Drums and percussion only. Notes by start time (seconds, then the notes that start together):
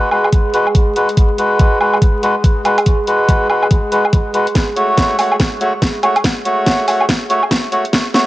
0.11 low woodblock
0.24 low woodblock
0.32 kick, closed hi-hat
0.54 closed hi-hat
0.67 low woodblock
0.75 kick, closed hi-hat
0.96 closed hi-hat
1.09 closed hi-hat
1.17 kick, closed hi-hat
1.38 closed hi-hat
1.59 kick, closed hi-hat
1.81 low woodblock
1.93 low woodblock
2.02 kick, closed hi-hat
2.23 closed hi-hat
2.44 kick, closed hi-hat
2.65 closed hi-hat, low woodblock
2.78 closed hi-hat, low woodblock
2.86 kick, closed hi-hat
3.07 closed hi-hat
3.29 kick, closed hi-hat
3.50 low woodblock
3.63 low woodblock
3.71 kick, closed hi-hat
3.92 closed hi-hat
4.05 low woodblock
4.13 kick, closed hi-hat
4.34 closed hi-hat
4.47 closed hi-hat
4.55 kick, snare, closed hi-hat
4.76 closed hi-hat
4.97 kick, snare, closed hi-hat
5.19 open hi-hat, low woodblock
5.32 low woodblock
5.40 kick, snare, closed hi-hat
5.61 closed hi-hat
5.82 kick, snare, closed hi-hat
6.03 closed hi-hat, low woodblock
6.16 closed hi-hat, low woodblock
6.24 kick, snare, closed hi-hat
6.45 closed hi-hat
6.66 kick, snare, closed hi-hat
6.88 open hi-hat, low woodblock
7.01 low woodblock
7.09 kick, snare, closed hi-hat
7.30 closed hi-hat
7.43 low woodblock
7.51 kick, snare, closed hi-hat
7.72 closed hi-hat
7.85 closed hi-hat
7.93 kick, snare, closed hi-hat
8.14 snare, closed hi-hat